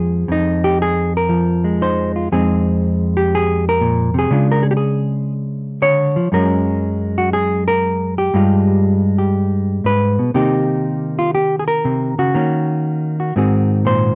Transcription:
Already playing: F2 F3 G#3 G#4
0.28 F2 D#4
0.64 G4
0.82 G#4
1.17 A#4
1.29 F3
1.64 G#3
1.81 D#4 C5
2.16 F4
2.32 F2 G#3 C4 D#4 G#4
3.17 G4
3.35 G#4
3.69 A#4
3.81 A#2
4.14 C3
4.19 G#4
4.31 C#3 G#3 D4 F4
4.52 A#4
4.63 G#4
4.71 G4
4.77 G#4
5.82 D3 C#5
6.16 F3
6.32 F#2 F#3 G#3 C#4 A#4
7.18 F#4
7.33 G#4
7.68 A#4
8.18 G4
8.34 G2 G3 G#3 F4
9.18 G4
9.84 G#2 B4
10.19 B2
10.34 C3 D#3 A#3 D#4 G4
11.19 F4
11.35 G4
11.59 G#4
11.68 A#4
11.85 C3
12.19 C#3 F#4
12.34 D#3 A#3 C#4
13.20 F#4
13.36 G#2 D#3 C4 F#4 G#4
13.85 A#2 C5

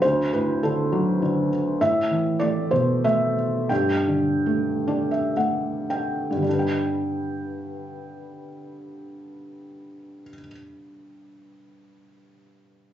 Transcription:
0.02 D2 C5
0.33 A2 B4
0.63 D3 A4
0.92 F#3
1.22 D3
1.81 A2 E5
2.11 E3
2.40 A3 D5
2.71 B2 C5
3.04 A3 E5
3.69 G2 G5
4.08 D3
4.46 A3
4.88 D4 D5
5.11 E5
5.37 A3 F#5
5.90 G5
6.31 G2
6.37 D3
6.42 G3
6.49 D4
6.53 B4
6.59 G5

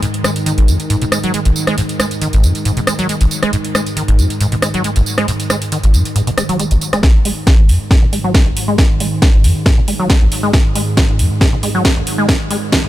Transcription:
Already playing: G#2 D#3
0.03 G#2, closed hi-hat, tambourine
0.14 closed hi-hat
0.24 G#3, cross-stick, closed hi-hat, tambourine
0.36 closed hi-hat, tambourine
0.46 D#3, closed hi-hat, tambourine
0.58 G#1, closed hi-hat
0.68 F#2, closed hi-hat, tambourine
0.80 closed hi-hat, tambourine
0.90 G#2, closed hi-hat, tambourine
1.02 B2, closed hi-hat, tambourine
1.12 G#3, cross-stick, closed hi-hat, tambourine
1.23 F#3, closed hi-hat, tambourine
1.34 G#3, closed hi-hat, tambourine
1.45 G#1, closed hi-hat, tambourine
1.56 tambourine
1.67 G#3, cross-stick, closed hi-hat, tambourine
1.78 G#2, closed hi-hat, tambourine
1.89 closed hi-hat, tambourine
2.00 G#3, cross-stick, closed hi-hat, tambourine
2.11 closed hi-hat, tambourine
2.21 D#3, closed hi-hat, tambourine
2.33 G#1, closed hi-hat, tambourine
2.43 F#2, closed hi-hat, tambourine
2.55 closed hi-hat, tambourine
2.65 G#2, closed hi-hat, tambourine
2.77 B2, closed hi-hat, tambourine
2.87 G#3, cross-stick, closed hi-hat, tambourine
2.99 F#3, closed hi-hat, tambourine
3.09 G#3, closed hi-hat, tambourine
3.21 G#1, closed hi-hat, tambourine
3.31 closed hi-hat, tambourine
3.43 G#3, cross-stick, closed hi-hat, tambourine
3.53 G#2, closed hi-hat, tambourine
3.65 closed hi-hat
3.75 G#3, cross-stick, closed hi-hat, tambourine
3.86 closed hi-hat, tambourine
3.97 D#3, closed hi-hat, tambourine
4.08 G#1, closed hi-hat
4.19 F#2, closed hi-hat, tambourine
4.30 closed hi-hat, tambourine
4.41 G#2, closed hi-hat, tambourine
4.52 B2, closed hi-hat, tambourine
4.62 G#3, cross-stick, closed hi-hat, tambourine
4.74 F#3, closed hi-hat, tambourine
4.84 G#3, closed hi-hat, tambourine
4.96 G#1, closed hi-hat, tambourine
5.06 tambourine
5.18 G#3, cross-stick, closed hi-hat, tambourine
5.28 G#2, closed hi-hat, tambourine
5.40 closed hi-hat, tambourine
5.50 G#3, cross-stick, closed hi-hat, tambourine
5.62 closed hi-hat, tambourine
5.72 D#3, closed hi-hat, tambourine
5.83 G#1, closed hi-hat, tambourine
5.94 F#2, closed hi-hat, tambourine
6.05 closed hi-hat, tambourine
6.16 G#2, closed hi-hat, tambourine
6.27 B2, closed hi-hat, tambourine
6.37 G#3, cross-stick, closed hi-hat, tambourine
6.49 F#3, closed hi-hat, tambourine
6.59 G#3, closed hi-hat, tambourine
6.71 G#1, closed hi-hat, tambourine
6.81 closed hi-hat, tambourine
6.93 G#3, cross-stick, closed hi-hat, tambourine
7.03 G#2 D#3, kick, snare
7.25 G#3, open hi-hat
7.47 D#3, kick, snare
7.58 G#1
7.69 F#2, open hi-hat
7.91 G#2, kick, snare
8.02 B2
8.13 G#3, open hi-hat
8.24 F#3
8.34 G#3, kick, snare
8.46 G#1
8.57 open hi-hat
8.68 G#3
8.78 G#2, kick, snare
9.00 G#3, open hi-hat
9.22 D#3, kick, snare
9.34 G#1
9.44 F#2, open hi-hat
9.66 G#2, kick, snare
9.78 B2
9.88 G#3, open hi-hat
9.99 F#3
10.10 G#3, kick, snare
10.21 G#1
10.32 open hi-hat
10.43 G#3
10.53 G#2, kick, snare
10.75 G#3, open hi-hat
10.97 D#3, kick, snare
11.09 G#1
11.19 F#2, open hi-hat
11.41 G#2, kick, snare
11.53 B2
11.63 G#3, open hi-hat
11.75 F#3
11.85 G#3, kick, snare
11.96 G#1
12.07 open hi-hat
12.18 G#3
12.28 G#2, kick, snare
12.50 G#3, open hi-hat
12.72 D#3, kick, snare
12.84 G#1

